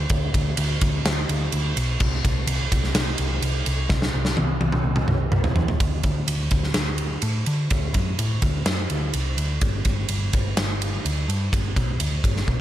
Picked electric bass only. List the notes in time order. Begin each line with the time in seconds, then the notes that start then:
0.10 D2
0.34 D2
0.58 D2
0.82 D2
1.05 D2
1.29 D2
1.53 D2
1.76 B1
2.00 C2
2.25 C2
2.47 C2
2.72 C2
2.94 C2
3.19 C2
3.42 C2
3.67 C2
3.90 C2
4.14 C2
4.38 C2
4.61 C2
4.84 C2
5.07 C2
5.32 C2
5.55 E2
5.80 D2
6.04 D2
6.27 D2
6.51 D2
6.75 D2
7.23 A2
7.47 D3
7.71 D2
7.95 F#2
8.19 A2
8.42 D2
8.66 F#2
8.90 D2
9.14 C2
9.37 D2
9.62 G1
9.85 G1
10.09 G1
10.33 G1
10.58 G1
11.05 D2
11.28 G2
11.52 G1
11.76 B1
12.00 D2
12.24 G1
12.48 B1